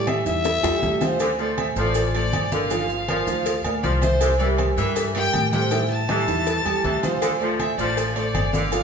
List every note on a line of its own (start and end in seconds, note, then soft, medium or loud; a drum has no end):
0.00 0.20 A2 loud
0.00 0.19 G3 medium
0.00 0.19 G4 medium
0.00 0.19 A4 medium
0.07 0.27 E5 medium
0.07 cowbell medium
0.07 high conga medium
0.07 low agogo loud
0.07 claves medium
0.07 maracas soft
0.25 0.61 E2 loud
0.25 0.56 E3 medium
0.25 0.57 E4 medium
0.25 0.57 E5 loud
0.25 1.07 E5 loud
0.25 cowbell medium
0.25 maracas medium
0.44 cowbell loud
0.44 high bongo medium
0.44 high conga soft
0.44 low agogo medium
0.44 maracas medium
0.63 0.81 E2 medium
0.63 0.79 G3 medium
0.63 0.80 G4 medium
0.63 0.80 A4 medium
0.63 cowbell medium
0.63 high bongo loud
0.63 high conga soft
0.63 high timbale medium
0.63 low agogo loud
0.63 claves medium
0.63 maracas soft
0.82 1.71 D2 loud
0.82 0.98 G3 medium
0.82 0.98 G4 medium
0.82 0.98 A4 medium
0.82 cowbell medium
0.82 high conga medium
0.82 maracas soft
1.01 1.17 F3 medium
1.01 1.17 F4 medium
1.01 1.36 C5 medium
1.01 1.17 F5 medium
1.01 cowbell medium
1.01 low bongo medium
1.01 high conga medium
1.01 low timbale medium
1.01 low agogo medium
1.01 maracas medium
1.20 1.30 D3 medium
1.20 cowbell loud
1.20 high conga soft
1.20 low agogo loud
1.20 maracas medium
1.38 1.58 F3 medium
1.38 1.70 A3 medium
1.38 1.70 A4 medium
1.38 1.70 C5 medium
1.38 1.57 D5 medium
1.38 high conga soft
1.38 maracas soft
1.58 1.67 E5 medium
1.58 cowbell medium
1.58 high conga medium
1.58 low agogo loud
1.58 maracas soft
1.76 2.29 A1 loud
1.76 2.21 F3 medium
1.76 2.07 A3 medium
1.76 2.08 A4 medium
1.76 2.08 C5 medium
1.76 2.12 D5 loud
1.76 cowbell medium
1.76 maracas medium
1.95 cowbell loud
1.95 high conga soft
1.95 low agogo medium
1.95 maracas loud
2.14 2.45 A3 medium
2.14 2.45 A4 medium
2.14 2.46 C5 medium
2.14 2.53 D5 loud
2.14 high conga soft
2.14 low agogo medium
2.14 maracas soft
2.32 3.21 G1 loud
2.32 cowbell medium
2.32 high conga medium
2.32 low agogo loud
2.32 maracas soft
2.52 2.84 D3 medium
2.52 2.67 A#3 medium
2.52 2.68 A#4 medium
2.52 2.68 D5 medium
2.52 3.82 F5 loud
2.52 cowbell medium
2.52 high conga medium
2.52 maracas medium
2.70 3.02 F3 loud
2.70 3.02 F4 medium
2.70 3.02 F5 medium
2.70 cowbell loud
2.70 high conga soft
2.70 low agogo loud
2.70 maracas loud
2.90 high conga soft
2.90 maracas soft
3.08 3.53 F3 medium
3.08 3.24 A#3 medium
3.08 3.24 A#4 medium
3.08 3.24 D5 medium
3.08 cowbell medium
3.08 high conga medium
3.08 low agogo loud
3.08 maracas soft
3.27 3.62 D2 loud
3.27 3.58 F3 medium
3.27 3.58 F4 loud
3.27 3.58 F5 loud
3.27 cowbell medium
3.27 maracas medium
3.46 cowbell loud
3.46 high conga soft
3.46 low agogo medium
3.46 maracas loud
3.64 3.82 D2 medium
3.64 3.96 A#3 medium
3.64 3.96 A#4 medium
3.64 3.96 D5 medium
3.64 cowbell medium
3.64 high conga soft
3.64 low agogo loud
3.64 maracas soft
3.83 4.72 C2 medium
3.83 4.03 F3 medium
3.83 3.91 D5 loud
3.83 cowbell medium
3.83 high conga medium
3.83 maracas soft
4.01 4.33 E3 medium
4.01 4.33 E4 medium
4.01 4.37 C5 loud
4.01 4.33 E5 loud
4.01 cowbell medium
4.01 high conga medium
4.01 low agogo medium
4.01 maracas medium
4.21 4.31 C3 loud
4.21 cowbell loud
4.21 high conga soft
4.21 low agogo loud
4.21 maracas loud
4.39 4.59 E3 medium
4.39 4.71 G3 medium
4.39 4.71 G4 medium
4.39 4.71 A#4 medium
4.39 4.47 D5 medium
4.39 high conga soft
4.39 maracas soft
4.57 4.66 C5 medium
4.57 cowbell medium
4.57 high conga medium
4.57 low agogo loud
4.57 maracas soft
4.76 5.30 G2 medium
4.76 5.21 E3 medium
4.76 5.08 G3 loud
4.76 5.08 G4 medium
4.76 5.09 A#4 medium
4.76 4.94 E5 loud
4.76 cowbell medium
4.76 maracas medium
4.95 5.04 E5 medium
4.95 cowbell loud
4.95 high conga soft
4.95 low agogo medium
4.95 maracas loud
5.14 5.46 G3 medium
5.14 5.46 G4 medium
5.14 5.46 A#4 medium
5.14 5.49 G5 loud
5.14 high conga soft
5.14 low agogo medium
5.14 maracas soft
5.33 6.22 A2 loud
5.33 cowbell medium
5.33 high conga medium
5.33 low agogo loud
5.33 maracas soft
5.52 5.84 C3 medium
5.52 5.68 G3 medium
5.52 5.68 G4 medium
5.52 5.68 A4 medium
5.52 5.87 G5 loud
5.52 cowbell medium
5.52 high conga medium
5.52 maracas medium
5.71 6.02 E3 medium
5.71 6.02 E4 loud
5.71 6.02 E5 loud
5.71 cowbell loud
5.71 high conga soft
5.71 low agogo loud
5.71 maracas medium
5.90 6.99 A5 loud
5.90 high conga soft
5.90 maracas soft
6.09 6.54 E3 medium
6.09 6.24 G3 medium
6.09 6.24 G4 medium
6.09 6.25 A4 medium
6.09 cowbell medium
6.09 high conga loud
6.09 low agogo loud
6.09 maracas soft
6.28 6.63 E2 loud
6.28 6.59 E3 loud
6.28 6.59 E4 loud
6.28 6.59 E5 loud
6.28 cowbell medium
6.28 maracas medium
6.47 cowbell loud
6.47 high conga soft
6.47 low agogo medium
6.47 maracas medium
6.65 6.83 E2 medium
6.65 6.96 G3 medium
6.65 6.96 G4 medium
6.65 6.96 A4 medium
6.65 cowbell medium
6.65 high conga soft
6.65 low agogo loud
6.65 maracas soft
6.84 7.72 D2 loud
6.84 7.04 E3 medium
6.84 cowbell medium
6.84 high conga medium
6.84 maracas soft
7.02 7.34 F3 loud
7.02 7.34 F4 medium
7.02 7.41 C5 loud
7.02 7.34 F5 medium
7.02 cowbell medium
7.02 high conga medium
7.02 low agogo medium
7.02 maracas medium
7.22 7.32 D3 loud
7.22 cowbell loud
7.22 high conga soft
7.22 low agogo loud
7.22 claves medium
7.22 maracas medium
7.40 7.61 F3 medium
7.40 7.71 A3 medium
7.40 7.72 A4 medium
7.40 7.72 C5 medium
7.40 7.58 D5 medium
7.40 high conga soft
7.40 maracas soft
7.59 7.76 E5 medium
7.59 cowbell medium
7.59 high conga medium
7.59 low agogo loud
7.59 claves medium
7.59 maracas soft
7.77 8.31 A1 medium
7.77 8.23 F3 medium
7.77 8.09 A3 medium
7.77 8.09 A4 medium
7.77 8.09 C5 medium
7.77 8.13 D5 loud
7.77 cowbell medium
7.77 maracas medium
7.97 cowbell loud
7.97 high conga soft
7.97 low agogo medium
7.97 maracas medium
8.15 8.46 A3 medium
8.15 8.47 A4 medium
8.15 8.47 C5 medium
8.15 8.54 D5 loud
8.15 high conga soft
8.15 low agogo medium
8.15 maracas soft
8.34 8.83 G1 medium
8.34 cowbell medium
8.34 high conga medium
8.34 low agogo loud
8.34 claves medium
8.34 maracas soft
8.52 8.83 D3 medium
8.52 8.69 A#3 medium
8.52 8.69 A#4 medium
8.52 8.69 D5 medium
8.52 8.83 F5 loud
8.52 cowbell medium
8.52 high conga medium
8.52 maracas medium
8.72 8.83 F3 medium
8.72 8.83 F4 medium
8.72 8.83 F5 medium
8.72 cowbell loud
8.72 high conga soft
8.72 low agogo loud
8.72 maracas loud